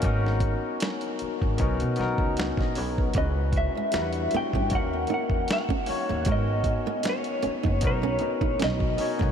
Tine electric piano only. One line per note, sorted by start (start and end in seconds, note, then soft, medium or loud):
0.02 0.10 A#3 medium
0.02 1.23 C#4 medium
0.02 1.24 D#4 medium
0.02 1.25 F#4 medium
0.06 1.26 B3 medium
0.06 1.25 A#4 medium
1.58 1.90 B3 medium
1.58 1.91 C#4 medium
1.58 1.91 D#4 medium
1.58 1.92 F#4 medium
1.58 1.92 A#4 medium
1.97 2.59 B3 medium
1.97 2.60 C#4 medium
1.97 2.60 D#4 medium
1.97 2.61 F#4 medium
2.01 2.38 A#4 medium
2.38 2.58 F#5 medium
2.59 2.75 D#5 medium
2.76 2.96 C#5 medium
2.98 3.17 B4 medium
3.14 3.92 G#3 medium
3.14 3.92 C#4 medium
3.14 3.92 E4 medium
3.14 3.93 F#4 medium
3.18 3.94 B4 medium
3.91 4.56 G3 medium
3.91 4.56 D4 medium
3.91 4.57 E4 medium
3.91 4.58 F#4 medium
3.95 4.01 A#4 medium
4.02 4.61 B4 medium
4.69 5.02 A#3 medium
4.69 5.02 C#4 medium
4.69 5.03 D#4 medium
4.69 5.03 F#4 medium
4.69 5.04 A#4 medium
5.08 5.71 A#3 medium
5.08 5.71 C#4 medium
5.08 5.72 D#4 medium
5.08 5.72 F#4 medium
5.12 5.73 A#4 medium
5.86 6.18 A#3 medium
5.86 6.18 C#4 medium
5.86 6.19 D#4 medium
5.86 6.19 F#4 medium
5.90 6.20 C#5 loud
6.24 7.46 B3 medium
6.24 7.47 C#4 medium
6.24 7.47 D#4 medium
6.24 7.48 F#4 medium
6.29 7.48 A#4 medium
7.80 8.13 B3 medium
7.80 8.14 C#4 medium
7.80 8.14 D#4 medium
7.80 8.15 F#4 medium
7.85 8.15 A#4 medium
8.19 8.82 B3 medium
8.19 8.83 C#4 medium
8.19 8.83 D#4 medium
8.19 8.84 F#4 medium
8.19 8.84 A#4 medium
8.97 9.29 B3 medium
8.97 9.30 C#4 medium
8.97 9.30 D#4 medium
8.97 9.31 F#4 medium
9.02 9.31 C#5 medium